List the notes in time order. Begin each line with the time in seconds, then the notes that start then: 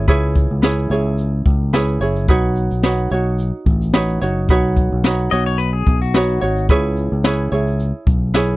0.08 C#2 E4 G#4 B4 C#5, kick, shaker
0.35 kick, shaker
0.51 C#2
0.62 E4 G#4 B4 C#5, snare, shaker
0.90 C#2 E4 G#4 C#5, shaker
1.18 shaker
1.46 C#2, kick, shaker
1.73 E4 G#4 B4 C#5, snare, shaker
2.00 F#1 E4 G#4 C#5, shaker
2.16 shaker
2.28 B1 D#4 F#4 B4 C#5, kick, shaker
2.56 shaker
2.71 B1, shaker
2.83 D#4 F#4 B4 C#5, snare, shaker
3.10 B1 D#4 F#4 C#5, shaker
3.38 shaker
3.66 A1, kick, shaker
3.82 shaker
3.93 D#4 F#4 B4 C#5, snare, shaker
4.21 F#1 D#4 F#4 C#5, snare, shaker
4.49 B1 D#4 F#4 B4 C#5, kick, shaker
4.76 kick, shaker
4.92 B1
5.04 D#4 F#4 B4 C#5, snare, shaker
5.31 B1 D#4 F#4 C#5 D#5, shaker
5.46 C#5, shaker
5.58 B4, shaker
5.73 G#4
5.87 B1, kick, shaker
6.02 F#4, shaker
6.14 D#4 F#4 B4 C#5, snare, shaker
6.41 G#1 D#4 F#4 C#5, shaker
6.56 shaker
6.69 C#2 E4 G#4 B4 C#5, kick, shaker
6.96 shaker
7.12 C#2
7.24 E4 G#4 B4 C#5, snare, shaker
7.51 C#2 E4 G#4 C#5, shaker
7.67 shaker
7.80 shaker
8.07 B1, kick, shaker
8.34 E4 G#4 B4 C#5, snare, shaker